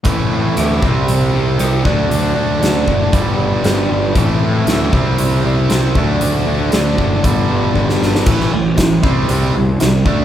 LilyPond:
<<
  \new Staff \with { instrumentName = "Distorted electric guitar" } { \time 4/4 \key a \minor \tempo 4 = 117 <a, e a c' e'>8 <a c' e'>8 <e a c' e'>8 <c g c' e'>4 <g c' e'>8 <c g c' e'>8 <d fis a d'>8 | <d fis a d'>8 <fis a d'>8 <d fis a d'>8 <fis a d'>8 <g, d g b d'>8 <g b d'>8 <g, d g b d'>4 | <a, e a c' e'>8 <a c' e'>8 <e a c' e'>8 <c g c' e'>4 <g c' e'>8 <c g c' e'>8 <d fis a d'>8 | <d fis a d'>8 <fis a d'>8 <d fis a d'>8 <fis a d'>8 <g, d g b d'>8 <g b d'>8 <g, d g b d'>4 |
<a, e a>8 <a, e>8 <a, e>8 <c g c'>8 <c g c'>8 <c g>8 <c g>8 <d a d'>8 | }
  \new Staff \with { instrumentName = "Overdriven electric guitar" } { \clef bass \time 4/4 \key a \minor <a, e a>4. <c g c'>2 <d a d'>8~ | <d a d'>2 <g, d g>2 | <a, e a>4. <c g c'>2 <d a d'>8~ | <d a d'>2 <g, d g>2 |
<a, e a>8 <a, e>8 <a, e>8 <c g c'>8 <c g c'>8 <c g>8 <c g>8 <d a d'>8 | }
  \new Staff \with { instrumentName = "Picked electric bass" } { \clef bass \time 4/4 \key a \minor a,,8 a,8 d,8 c,8 c,8 c,8 c,8 d,8 | d,8 d,8 d,8 fis,,8 g,,8 g,,8 g,,8 g,,8 | a,,8 a,8 d,8 c,8 c,8 c,8 c,8 d,8 | d,8 d,8 d,8 fis,,8 g,,8 g,,8 g,,8 g,,8 |
a,,8 a,,8 a,,8 c,8 c,8 c,8 c,8 d,8 | }
  \new DrumStaff \with { instrumentName = "Drums" } \drummode { \time 4/4 <hh bd>4 <hh ss>8 bd8 hh4 <hh ss>8 bd8 | hh4 <hh sn>8 bd8 <hh bd>4 <hh sn>4 | <hh bd>4 <hh sn>8 bd8 hh4 <hh sn>8 bd8 | hh4 <hh sn>8 bd8 <hh bd>4 bd16 sn16 sn16 sn16 |
<cymc bd>16 sn8. <hh bd sn>8 bd8 hh4 <hh sn>8 bd8 | }
>>